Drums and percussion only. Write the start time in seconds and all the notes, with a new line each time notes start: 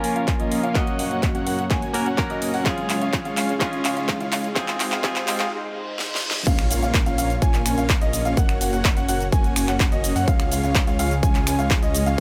0.04 open hi-hat
0.16 closed hi-hat
0.28 kick, clap, closed hi-hat
0.40 closed hi-hat
0.52 open hi-hat
0.63 closed hi-hat
0.75 kick, clap, closed hi-hat
0.87 closed hi-hat
0.99 open hi-hat
1.11 closed hi-hat
1.23 kick, clap, closed hi-hat
1.35 closed hi-hat
1.47 open hi-hat
1.59 closed hi-hat
1.70 kick, clap, closed hi-hat
1.82 closed hi-hat
1.94 open hi-hat
2.06 closed hi-hat
2.18 kick, clap, closed hi-hat
2.30 closed hi-hat
2.42 open hi-hat
2.54 open hi-hat
2.66 kick, clap, closed hi-hat
2.78 closed hi-hat
2.90 clap, open hi-hat
3.02 closed hi-hat
3.13 kick, clap, closed hi-hat
3.25 closed hi-hat
3.37 clap, open hi-hat
3.49 closed hi-hat
3.61 kick, clap, closed hi-hat
3.73 closed hi-hat
3.85 clap, open hi-hat
3.97 closed hi-hat
4.09 kick, clap, closed hi-hat
4.21 closed hi-hat
4.32 clap, open hi-hat
4.44 closed hi-hat
4.56 kick, clap, closed hi-hat
4.68 clap, closed hi-hat
4.80 clap, open hi-hat
4.92 clap, closed hi-hat
5.04 kick, clap, closed hi-hat
5.16 clap, closed hi-hat
5.28 clap, open hi-hat
5.40 clap, closed hi-hat
5.99 snare
6.15 snare
6.31 snare
6.47 kick, closed hi-hat, crash, shaker
6.59 finger snap, closed hi-hat, shaker
6.71 open hi-hat, shaker
6.82 closed hi-hat, shaker
6.94 kick, clap, closed hi-hat, shaker
7.06 closed hi-hat, shaker
7.18 open hi-hat, shaker
7.30 closed hi-hat, shaker
7.42 kick, closed hi-hat, shaker
7.54 clap, closed hi-hat, shaker
7.66 finger snap, open hi-hat, shaker
7.78 closed hi-hat, shaker
7.89 kick, clap, closed hi-hat, shaker
8.01 closed hi-hat, shaker
8.13 open hi-hat, shaker
8.25 closed hi-hat, shaker
8.37 kick, closed hi-hat, shaker
8.49 finger snap, closed hi-hat, shaker
8.61 open hi-hat, shaker
8.73 closed hi-hat, shaker
8.85 kick, clap, closed hi-hat, shaker
8.97 closed hi-hat, shaker
9.09 open hi-hat, shaker
9.20 closed hi-hat, shaker
9.32 kick, closed hi-hat, shaker
9.44 closed hi-hat, shaker
9.56 finger snap, open hi-hat, shaker
9.68 finger snap, clap, closed hi-hat, shaker
9.80 kick, clap, closed hi-hat, shaker
9.92 closed hi-hat, shaker
10.04 open hi-hat, shaker
10.16 open hi-hat, shaker
10.28 kick, closed hi-hat, shaker
10.40 finger snap, closed hi-hat, shaker
10.52 open hi-hat, shaker
10.63 closed hi-hat, shaker
10.75 kick, clap, closed hi-hat, shaker
10.87 closed hi-hat, shaker
10.99 open hi-hat, shaker
11.11 closed hi-hat, shaker
11.23 kick, closed hi-hat, shaker
11.35 clap, closed hi-hat, shaker
11.47 finger snap, open hi-hat, shaker
11.59 closed hi-hat, shaker
11.71 kick, clap, closed hi-hat, shaker
11.83 closed hi-hat, shaker
11.95 open hi-hat, shaker
12.06 closed hi-hat, shaker